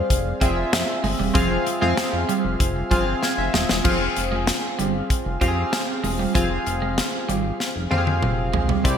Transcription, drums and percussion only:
0.10 kick medium
0.10 closed hi-hat loud
0.41 kick medium
0.41 closed hi-hat medium
0.73 snare loud
0.73 closed hi-hat medium
1.04 open hi-hat medium
1.35 kick loud
1.35 closed hi-hat loud
1.67 closed hi-hat medium
1.97 snare loud
1.97 closed hi-hat loud
2.29 closed hi-hat medium
2.60 kick medium
2.60 closed hi-hat medium
2.91 kick medium
2.91 closed hi-hat medium
3.23 snare medium
3.54 snare medium
3.69 snare medium
3.85 kick loud
3.85 crash medium
4.16 closed hi-hat medium
4.47 snare loud
4.47 closed hi-hat medium
4.79 closed hi-hat medium
5.10 kick medium
5.10 closed hi-hat medium
5.41 kick medium
5.41 closed hi-hat medium
5.73 snare loud
5.73 closed hi-hat medium
6.04 open hi-hat medium
6.35 kick loud
6.35 closed hi-hat medium
6.67 closed hi-hat medium
6.98 snare loud
6.98 closed hi-hat medium
7.29 closed hi-hat medium
7.60 snare medium
7.91 high tom medium
8.07 high tom medium
8.23 mid tom medium
8.54 floor tom medium
8.69 floor tom medium
8.85 kick loud
8.85 closed hi-hat medium

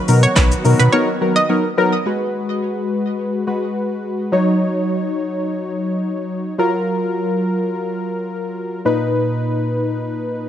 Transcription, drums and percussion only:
0.08 open hi-hat medium
0.08 shaker medium
0.23 closed hi-hat medium
0.23 shaker medium
0.36 kick loud
0.36 snare medium
0.36 clap loud
0.36 closed hi-hat medium
0.36 shaker medium
0.52 closed hi-hat medium
0.52 shaker medium
0.65 open hi-hat medium
0.65 shaker soft
0.80 closed hi-hat medium
0.80 shaker medium

